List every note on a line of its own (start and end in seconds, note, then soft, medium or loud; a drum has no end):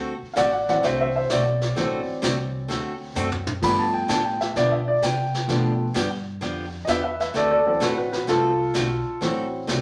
0.00 0.19 D2 medium
0.00 0.13 D3 medium
0.00 0.13 A3 medium
0.00 0.13 C4 medium
0.00 0.13 F#4 medium
0.00 0.13 A4 medium
0.22 muted upright bass stroke soft
0.34 0.82 A1 loud
0.34 0.48 D3 medium
0.34 0.49 A3 medium
0.34 0.49 C4 medium
0.34 0.49 F#4 medium
0.34 0.49 A4 medium
0.34 0.51 D5 medium
0.34 0.37 F5 medium
0.34 snare medium
0.34 hi-hat pedal medium
0.38 0.52 F#5 medium
0.52 0.66 D5 medium
0.52 0.68 F#5 medium
0.68 1.74 E3 medium
0.68 1.75 F#3 medium
0.68 1.76 C4 medium
0.68 0.83 D5 medium
0.68 0.84 F#5 medium
0.68 snare soft
0.83 1.28 C2 medium
0.83 1.06 D3 medium
0.83 1.06 A3 medium
0.83 1.07 C4 medium
0.83 1.07 F#4 medium
0.83 1.07 A4 medium
0.83 0.98 C5 medium
0.83 0.99 E5 medium
0.83 brush sweep soft
0.83 snare soft
1.00 1.14 C5 medium
1.00 1.15 E5 medium
1.16 1.29 C5 medium
1.16 1.30 E5 medium
1.30 1.75 B1 loud
1.30 1.42 D3 medium
1.30 1.43 A3 medium
1.30 1.43 C4 medium
1.30 1.43 F#4 medium
1.30 1.43 A4 medium
1.30 2.66 D5 medium
1.30 snare medium
1.30 hi-hat pedal medium
1.61 snare soft
1.75 1.99 D3 medium
1.75 3.58 E3 medium
1.75 3.59 F#3 soft
1.75 1.99 A3 medium
1.75 1.99 C4 medium
1.75 3.59 C4 medium
1.75 2.00 F#4 medium
1.75 2.00 A4 medium
1.75 brush sweep soft
1.75 snare soft
2.09 muted upright bass stroke soft
2.22 2.68 C2 medium
2.22 2.35 D3 medium
2.22 2.35 A3 medium
2.22 2.35 C4 medium
2.22 2.35 F#4 medium
2.22 2.35 A4 medium
2.22 snare medium
2.22 hi-hat pedal medium
2.68 3.14 D2 medium
2.68 2.92 D3 medium
2.68 2.92 A3 medium
2.68 2.93 C4 medium
2.68 2.93 F#4 medium
2.68 2.93 A4 medium
2.68 brush sweep soft
2.68 snare soft
3.15 3.61 F#2 medium
3.15 3.28 D3 medium
3.15 3.28 A3 medium
3.15 3.28 C4 medium
3.15 3.28 F#4 medium
3.15 3.28 A4 medium
3.15 floor tom soft
3.15 hi-hat pedal medium
3.32 floor tom medium
3.47 mid tom medium
3.62 4.08 G2 medium
3.62 3.86 D3 medium
3.62 5.44 F3 medium
3.62 3.86 F3 medium
3.62 5.45 A3 medium
3.62 5.45 B3 medium
3.62 3.86 B3 medium
3.62 3.86 D4 medium
3.62 3.86 G4 medium
3.62 3.78 B5 medium
3.62 brush sweep medium
3.62 kick medium
3.62 snare soft
3.62 crash medium
3.79 3.94 A5 medium
3.94 4.09 G5 medium
4.08 4.54 A2 medium
4.08 4.21 D3 medium
4.08 4.21 F3 medium
4.08 4.21 B3 medium
4.08 4.22 D4 medium
4.08 4.22 G4 medium
4.08 4.24 A5 medium
4.08 snare medium
4.08 hi-hat pedal medium
4.25 4.40 G5 medium
4.41 4.55 E5 medium
4.41 snare soft
4.56 5.01 B2 medium
4.56 4.79 D3 medium
4.56 4.79 F3 medium
4.56 4.79 B3 medium
4.56 4.79 D4 medium
4.56 4.80 G4 medium
4.56 4.71 D5 medium
4.56 brush sweep soft
4.56 snare soft
4.72 4.87 E5 medium
4.88 5.02 D5 medium
5.02 5.47 C3 medium
5.02 5.15 D3 medium
5.02 5.15 F3 medium
5.02 5.15 B3 medium
5.02 5.15 D4 medium
5.02 5.15 G4 medium
5.02 5.93 G5 medium
5.02 snare medium
5.02 hi-hat pedal medium
5.34 snare soft
5.48 5.94 B2 medium
5.48 5.72 D3 medium
5.48 5.84 F3 medium
5.48 5.72 F3 medium
5.48 5.84 A3 medium
5.48 5.85 B3 medium
5.48 5.72 B3 medium
5.48 5.72 D4 medium
5.48 5.72 G4 medium
5.48 brush sweep medium
5.48 snare soft
5.94 6.40 G2 medium
5.94 6.07 D3 medium
5.94 6.07 F3 medium
5.94 6.07 B3 medium
5.94 6.07 D4 medium
5.94 6.08 G4 medium
5.94 snare medium
5.94 hi-hat pedal medium
6.41 6.87 F2 medium
6.41 6.65 D3 medium
6.41 6.65 F3 medium
6.41 6.65 B3 medium
6.41 6.65 D4 medium
6.41 6.65 G4 medium
6.41 brush sweep soft
6.41 snare soft
6.85 7.33 E2 loud
6.85 7.00 D3 medium
6.85 7.00 F3 medium
6.85 7.00 B3 medium
6.85 7.01 D4 medium
6.85 7.01 G4 medium
6.85 6.88 D#5 medium
6.85 snare medium
6.85 hi-hat pedal medium
6.89 7.02 B4 medium
6.89 7.03 E5 loud
7.04 7.18 B4 medium
7.04 7.19 E5 medium
7.20 7.34 B4 medium
7.20 7.35 E5 medium
7.20 snare soft
7.34 7.80 D2 medium
7.34 7.58 D3 medium
7.34 7.58 A3 medium
7.34 7.58 C4 medium
7.34 7.58 F#4 medium
7.34 7.50 A4 medium
7.34 7.58 A4 medium
7.34 7.50 D5 medium
7.34 brush sweep medium
7.34 snare soft
7.51 7.65 A4 medium
7.51 7.66 D5 medium
7.66 8.25 E3 medium
7.66 8.25 F#3 soft
7.66 8.25 C4 medium
7.66 7.81 A4 medium
7.66 7.82 D5 medium
7.80 8.27 A1 loud
7.80 7.93 D3 medium
7.80 7.93 A3 medium
7.80 7.93 C4 medium
7.80 7.94 F#4 medium
7.80 7.96 F#4 medium
7.80 7.94 A4 medium
7.80 7.97 B4 medium
7.80 snare medium
7.80 hi-hat pedal medium
7.97 8.11 F#4 medium
7.97 8.11 B4 medium
8.12 8.27 F#4 medium
8.12 8.28 B4 medium
8.12 snare soft
8.27 8.74 C2 medium
8.27 8.51 D3 medium
8.27 8.51 A3 medium
8.27 8.51 C4 medium
8.27 9.18 F4 loud
8.27 8.51 F#4 medium
8.27 8.52 A4 medium
8.27 9.19 A4 loud
8.27 brush sweep soft
8.27 snare soft
8.74 9.04 B1 medium
8.74 8.87 D3 medium
8.74 8.87 A3 medium
8.74 8.87 C4 medium
8.74 8.87 F#4 medium
8.74 8.87 A4 medium
8.74 snare medium
8.74 hi-hat pedal medium
9.21 9.67 A1 medium
9.21 9.44 D3 medium
9.21 9.81 E3 medium
9.21 9.81 F#3 medium
9.21 9.45 A3 medium
9.21 9.81 C4 medium
9.21 9.45 C4 medium
9.21 9.45 F#4 medium
9.21 9.45 A4 medium
9.21 brush sweep medium
9.21 snare soft
9.67 9.81 C2 medium
9.67 9.80 D3 medium
9.67 9.80 A3 medium
9.67 9.80 C4 medium
9.67 9.81 F#4 medium
9.67 9.81 A4 medium
9.67 snare medium
9.67 hi-hat pedal medium